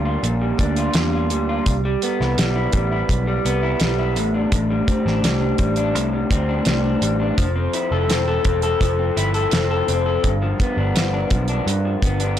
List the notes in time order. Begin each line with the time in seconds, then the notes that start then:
Already playing: D2 A#2 G3 D4
0.05 F4
0.23 A#1 A#2, closed hi-hat
0.41 G3
0.59 D2 D4, kick, closed hi-hat
0.76 F4, closed hi-hat
0.94 E2 G3, snare, closed hi-hat
1.13 F4
1.30 D2 G3, closed hi-hat
1.49 F4
1.66 C2, kick, closed hi-hat
1.85 G3
2.02 B3, closed hi-hat
2.21 C2 E4, snare
2.38 B1 G3, snare, closed hi-hat
2.56 E4
2.72 A1 G3, kick, closed hi-hat
2.92 E4
3.09 B1, kick, closed hi-hat
3.27 G3
3.45 C2 B3, closed hi-hat
3.63 E4
3.80 B1 G3, snare, closed hi-hat
3.99 E4
4.16 A1 A2, closed hi-hat
4.34 D4
4.52 A1 A2, kick, closed hi-hat
4.70 G3
4.88 C4, kick, closed hi-hat
5.06 A1 D4, snare
5.23 C2 G3, snare, closed hi-hat
5.41 D4
5.58 A1 G3, kick, closed hi-hat
5.76 D4, closed hi-hat
5.95 C2 A2, closed hi-hat
6.13 G3
6.31 D2 C4, kick, closed hi-hat
6.49 D4
6.65 C2 G3, snare, closed hi-hat
6.84 D4
7.02 A1 G3, closed hi-hat
7.20 D4
7.38 F1 F3, kick, closed hi-hat
7.56 C4
7.73 E4, closed hi-hat
7.91 F1 A4
8.09 E1 C4, snare, closed hi-hat
8.28 A4
8.45 E1 C4, kick, closed hi-hat
8.62 A4, closed hi-hat
8.81 F1 F3, kick, closed hi-hat
8.99 C4
9.17 G1 E4, closed hi-hat
9.34 A4, closed hi-hat
9.51 F1 C4, snare, closed hi-hat
9.71 A4
9.88 F1 C4, closed hi-hat
10.06 A4
10.23 G1 G2, kick, closed hi-hat
10.42 F3
10.60 B3, kick, closed hi-hat
10.77 G1 D4
10.95 G1 F3, snare, closed hi-hat
11.13 D4
11.30 B1 F3, kick, closed hi-hat
11.48 D4, closed hi-hat
11.66 G2, closed hi-hat
11.85 F3
12.02 G1 B3, kick, closed hi-hat
12.20 D4, closed hi-hat